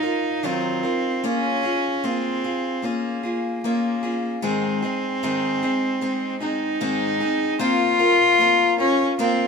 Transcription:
Already playing: cello D#4
0.03 steel-string acoustic guitar D#4 F4 A#4
0.43 steel-string acoustic guitar D#3 F#3 D#4 F4 A#4, cello C4
0.83 steel-string acoustic guitar D#4 F4 A#4
1.24 steel-string acoustic guitar A#3 C#4 F4 G#4, cello C#4
1.63 steel-string acoustic guitar C#4 F4 G#4
2.04 steel-string acoustic guitar A#3 F4 G#4, cello C4
2.44 steel-string acoustic guitar F4 G#4
2.82 steel-string acoustic guitar A#3 C#4 F4 G#4, cello A#3
3.23 steel-string acoustic guitar C#4 F4 G#4
3.64 cello A#3, steel-string acoustic guitar A#3 C#4 F4 G#4
4.03 steel-string acoustic guitar C#4 F4 G#4
4.42 steel-string acoustic guitar G#2 D#3 G#3 C4 D#4 G#4, cello C4
4.82 steel-string acoustic guitar G#3 C4 D#4 G#4
5.23 steel-string acoustic guitar G#2 D#3 G#3 C4 D#4 G#4
5.63 steel-string acoustic guitar G#3 C4 D#4 G#4
6.01 steel-string acoustic guitar G#3 C4 D#4 G#4
6.40 steel-string acoustic guitar G#3 C4 D#4 G#4, cello D#4
6.81 steel-string acoustic guitar G#2 D#3 G#3 C4 D#4 G#4
7.20 steel-string acoustic guitar G#3 C4 D#4 G#4
7.59 steel-string acoustic guitar A#3 C4 F4 A#4, cello F4
7.99 steel-string acoustic guitar C4 F4 A#4
8.38 steel-string acoustic guitar A#3 C4 F4 A#4
8.78 cello C#4, steel-string acoustic guitar F4 A#4
9.19 steel-string acoustic guitar A#3 C4 F4 A#4, cello C4

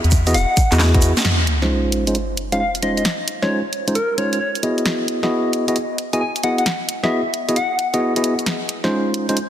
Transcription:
0.04 fm bass E2, closed hi-hat
0.11 kick, closed hi-hat, shaker
0.27 tine electric piano B3 E4 F#4 G#4 D#5, closed hi-hat, shaker
0.34 fm bass E1, soft synth lead F#5, closed hi-hat, shaker
0.57 kick, closed hi-hat, shaker
0.72 fm bass E2, tine electric piano B3 E4 F#4 G#4 D#5, clap, closed hi-hat, shaker
0.80 snare, clap, shaker
0.94 tine electric piano B3 E4 F#4 G#4 D#5, kick, closed hi-hat
1.02 fm bass E2, closed hi-hat, shaker
1.17 snare, closed hi-hat, shaker
1.25 snare, closed hi-hat, sub drop
1.47 closed hi-hat
1.62 tine electric piano G#3 C#4 D#4 F4 C5, snare
1.92 closed hi-hat
2.07 tine electric piano G#3 C#4 D#4 F4 C5, closed hi-hat
2.15 closed hi-hat
2.37 closed hi-hat
2.52 tine electric piano G#3 C#4 D#4 F4 C5, soft synth lead F5, closed hi-hat
2.60 soft synth lead F5
2.75 closed hi-hat
2.83 tine electric piano G#3 C#4 D#4 F4 C5, soft synth lead D#5, closed hi-hat
2.97 soft synth lead D#5, closed hi-hat
3.05 snare, closed hi-hat
3.28 closed hi-hat
3.42 tine electric piano G#3 C#4 D#4 F4 C5, soft synth lead C#5, snare
3.73 closed hi-hat
3.88 tine electric piano G#3 C#4 D#4 F4 C5, closed hi-hat
3.95 soft synth lead A#4, closed hi-hat
4.18 tine electric piano G#3 C#4 D#4 F4 C5, soft synth lead C#5, closed hi-hat
4.33 soft synth lead C#5, closed hi-hat
4.40 soft synth lead C#5
4.55 closed hi-hat
4.63 tine electric piano B3 E4 F#4 G#4 D#5, closed hi-hat
4.78 closed hi-hat
4.86 snare, closed hi-hat
5.08 closed hi-hat
5.23 tine electric piano B3 E4 F#4 G#4 D#5, snare
5.53 closed hi-hat
5.68 tine electric piano B3 E4 F#4 G#4 D#5, closed hi-hat
5.76 closed hi-hat
5.98 closed hi-hat
6.13 tine electric piano B3 E4 F#4 G#4 D#5, soft synth lead G#5, closed hi-hat
6.21 soft synth lead G#5
6.36 closed hi-hat
6.43 tine electric piano B3 E4 F#4 G#4 D#5, soft synth lead F#5, closed hi-hat
6.58 soft synth lead F#5, closed hi-hat
6.66 snare, closed hi-hat
6.89 closed hi-hat
7.03 tine electric piano B3 E4 F#4 G#4 D#5, soft synth lead E5, snare
7.34 closed hi-hat
7.49 tine electric piano B3 E4 F#4 G#4 D#5, closed hi-hat
7.56 soft synth lead F#5, closed hi-hat
7.79 closed hi-hat
7.94 tine electric piano B3 E4 F#4 G#4 D#5, closed hi-hat
8.16 tine electric piano B3 E4 F#4 G#4 D#5, closed hi-hat
8.24 closed hi-hat
8.39 closed hi-hat
8.46 snare, closed hi-hat
8.69 closed hi-hat
8.84 tine electric piano G#3 C#4 D#4 F4 C5, snare
9.14 closed hi-hat
9.29 tine electric piano G#3 C#4 D#4 F4 C5, closed hi-hat
9.37 closed hi-hat

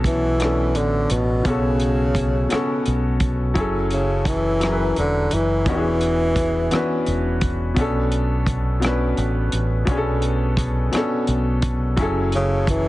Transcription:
Already playing: fingered electric bass B1, grand piano B2 B3 C#4 F#4 A4
0.04 tenor saxophone E3, kick, closed hi-hat
0.38 grand piano B2 B3 C#4, cross-stick, closed hi-hat
0.43 grand piano D4 A4
0.75 fingered electric bass A1, tenor saxophone D3, closed hi-hat
1.10 fingered electric bass A1, tenor saxophone B2, closed hi-hat
1.43 fingered electric bass B1, grand piano B2 B3 C#4, tenor saxophone C#3, kick, closed hi-hat
1.48 grand piano F#4 A4
1.80 closed hi-hat
2.15 kick, closed hi-hat
2.49 grand piano B2 B3 C#4, muted fingered electric bass stroke, cross-stick, closed hi-hat
2.53 grand piano F#4 A4
2.86 fingered electric bass B1, closed hi-hat
3.20 kick, closed hi-hat
3.54 fingered electric bass F#1, grand piano F#3 C#4 E4, kick, closed hi-hat
3.58 grand piano G#4 A4
3.91 tenor saxophone C#3, closed hi-hat
4.25 tenor saxophone E3, kick, closed hi-hat
4.60 grand piano F#3 C#4 E4, cross-stick, closed hi-hat
4.64 grand piano G#4 A#4
4.72 grand piano B4
4.96 fingered electric bass E1, tenor saxophone D3, closed hi-hat
5.31 fingered electric bass F#1, tenor saxophone E3, closed hi-hat
5.65 fingered electric bass E1, grand piano E3 B3 C#4 D4, kick, closed hi-hat
5.69 tenor saxophone E3, grand piano F#4 G4
5.77 grand piano G#4
6.01 closed hi-hat
6.36 kick, closed hi-hat
6.70 grand piano E3 B3 C#4 D4, cross-stick, closed hi-hat
6.75 grand piano F#4 B4
7.06 fingered electric bass E1, closed hi-hat
7.41 kick, closed hi-hat
7.74 fingered electric bass B1, grand piano B2 B3 C#4, kick, closed hi-hat
7.79 grand piano D4 A4
8.12 closed hi-hat
8.46 kick, closed hi-hat
8.80 grand piano B2 B3 C#4, closed hi-hat
8.84 grand piano D4 B4, cross-stick
9.17 fingered electric bass A1, closed hi-hat
9.52 fingered electric bass A1, closed hi-hat
9.85 fingered electric bass B1, grand piano B2 B3 C#4, kick, closed hi-hat
9.90 grand piano D4 G#4
9.97 grand piano A4
10.22 closed hi-hat
10.57 kick, closed hi-hat
10.91 grand piano B2 B3 C#4, cross-stick, closed hi-hat
10.96 grand piano D4 A4
11.27 fingered electric bass B1, closed hi-hat
11.62 kick, closed hi-hat
11.96 fingered electric bass F#1, grand piano F#3 C#4 E4, kick, closed hi-hat
12.01 grand piano G#4 A4
12.32 tenor saxophone C#3, closed hi-hat
12.67 tenor saxophone E3, kick, closed hi-hat

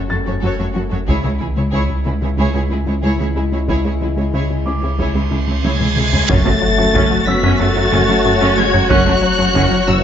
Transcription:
Already playing: sub bass F#1, french horn section A3 C#4
0.10 cello section F#2, analog synth bass F#2, violin section F#4 A4, synth pluck F#4, viola section F#4, grand piano A6
0.26 cello section F#2, analog synth bass F#2, synth pluck F#4, viola section F#4, violin section A4 C#5
0.41 analog synth bass F#2, cello section F#2, synth pluck F#3, viola section F#4, violin section A4 C#5
0.58 analog synth bass F#2, cello section F#2, synth pluck A3, viola section F#4, violin section A4 C#5
0.74 cello section F#2, analog synth bass F#3, synth pluck C#4, violin section F#4 A4, viola section F#4
0.90 analog synth bass F#2, cello section F#2, viola section F#4, synth pluck F#4, violin section A4 C#5
1.06 cello section C#2, analog synth bass C#2, sub bass C#2, synth pluck C#3, french horn section G#3 E4, viola section E4, violin section G#4 C#5, taiko
1.23 cello section C#2, analog synth bass C#3, synth pluck G#3, viola section E4, violin section G#4 C#5
1.38 analog synth bass C#2, cello section C#2, synth pluck E3, violin section E4 G#4, viola section E4
1.56 cello section C#2, analog synth bass C#3, synth pluck G#3, viola section E4, violin section G#4 C#5
1.71 analog synth bass C#2, cello section C#2, synth pluck C#3, viola section E4, violin section G#4 C#5
1.90 analog synth bass C#2
2.05 cello section C#2, analog synth bass C#3, synth pluck G#3, violin section E4 G#4, viola section E4
2.21 cello section C#2, analog synth bass C#3, synth pluck G#3, viola section E4, violin section G#4 C#5
2.37 analog synth bass C#2, cello section C#2, synth pluck C#3, viola section E4, violin section G#4 C#5
2.54 cello section C#2, analog synth bass C#3, synth pluck G#3, viola section E4, violin section G#4 C#5
2.70 analog synth bass C#2, cello section C#2, synth pluck C#4, violin section E4 G#4, viola section E4
2.86 analog synth bass C#2, cello section C#2, synth pluck C#4, viola section E4, violin section G#4 C#5
3.02 analog synth bass C#2, cello section C#2, synth pluck C#3, viola section E4, violin section G#4 C#5
3.19 analog synth bass C#2, cello section C#2, synth pluck E3, viola section E4, violin section G#4 C#5
3.36 cello section C#2, analog synth bass C#3, synth pluck G#3, violin section E4 G#4, viola section E4
3.52 analog synth bass C#2, cello section C#2, synth pluck C#4, viola section E4, violin section G#4 C#5
3.68 cello section C#2, analog synth bass C#2, synth pluck C#3, viola section E4, violin section G#4 C#5, taiko, reverse cymbal
3.84 cello section C#2, analog synth bass C#3, synth pluck G#3, viola section E4, violin section G#4 C#5
4.00 cello section C#2, analog synth bass C#2, synth pluck E3, viola section E4, violin section E4 G#4
4.16 cello section C#2, analog synth bass C#3, synth pluck G#3, viola section E4, violin section G#4 C#5
4.34 analog synth bass C#2, cello section C#2, synth pluck C#3, viola section E4, violin section G#4 C#5
4.50 analog synth bass C#2
4.66 cello section C#2, analog synth bass C#3, synth pluck G#3, viola section E4, violin section E4 G#4, grand piano D6
4.83 cello section C#2, analog synth bass C#3, synth pluck G#3, viola section E4, violin section G#4 C#5
4.99 analog synth bass C#2, cello section C#2, synth pluck C#3, viola section E4, violin section G#4 C#5, taiko
5.15 cello section C#2, analog synth bass C#3, synth pluck G#3, viola section E4, violin section G#4 C#5
5.31 analog synth bass C#2, cello section C#2, synth pluck C#4, viola section E4, violin section E4 G#4
5.47 analog synth bass C#2, cello section C#2, synth pluck C#4, viola section E4, violin section G#4 C#5
5.63 analog synth bass C#2, cello section C#2, synth pluck C#3, french horn section G#3, viola section E4, violin section G#4 C#5 G#6, taiko high
5.80 analog synth bass C#2, cello section C#2, synth pluck E3, viola section E4, violin section G#4 C#5, taiko mid
5.96 cello section C#2, analog synth bass C#3, synth pluck G#3, viola section E4, violin section E4 G#4, taiko mid
6.13 analog synth bass C#2, cello section C#2, synth pluck C#4, viola section E4, violin section G#4 C#5, taiko low
6.29 double bass section F#1, sub bass F#1, analog synth bass F#2, cello section F#2, synth pluck F#3, french horn section A3, viola section C#4 F#4, violin section F#4 C#5 A6, taiko, impact
6.45 analog synth bass F#2, cello section F#2, synth pluck A3, viola section A3, taiko low-mid
6.62 analog synth bass F#3
6.78 cello section F#2, analog synth bass F#3, viola section A3, synth pluck C#4
6.95 double bass section F#1, analog synth bass F#2, cello section F#2, synth pluck F#3, viola section C#4, taiko
7.11 analog synth bass F#3
7.27 double bass section F#1, cello section F#2, analog synth bass F#3, viola section F#3, french horn section B3, synth pluck C#4, grand piano E6, violin section B6
7.43 analog synth bass F#2, cello section F#2, synth pluck F#3, viola section C#4
7.59 double bass section F#1, cello section F#2, analog synth bass F#2, synth pluck A3, viola section A3, french horn section A3, violin section A6
7.76 cello section F#2, analog synth bass F#2, viola section F#3, synth pluck F#4
7.92 double bass section F#1, analog synth bass F#2, cello section F#2, synth pluck F#3, viola section C#4
8.08 cello section F#2, analog synth bass F#3, viola section A3, synth pluck C#4
8.25 double bass section F#1, cello section F#2, analog synth bass F#2, viola section F#3, synth pluck F#4
8.41 analog synth bass F#2, cello section F#2, synth pluck F#3, viola section C#4
8.57 double bass section F#1, analog synth bass F#2, cello section F#2, french horn section G#3, viola section A3, synth pluck F#4, violin section G#6
8.74 cello section F#2, analog synth bass F#3, viola section F#3, synth pluck C#4, taiko low-mid
8.90 double bass section F#1, analog synth bass F#2, cello section F#2, synth pluck F#3, french horn section F#3, viola section C#4, grand piano F#6, violin section F#6, taiko
9.06 analog synth bass F#2, cello section F#2, synth pluck A3, viola section A3, taiko low-mid
9.22 analog synth bass F#3
9.39 cello section F#2, analog synth bass F#3, viola section A3, synth pluck C#4
9.55 double bass section F#1, analog synth bass F#2, cello section F#2, synth pluck F#3, viola section C#4, taiko
9.71 analog synth bass F#3
9.88 double bass section F#1, cello section F#2, french horn section E3, analog synth bass F#3, viola section F#3, synth pluck C#4, violin section E6

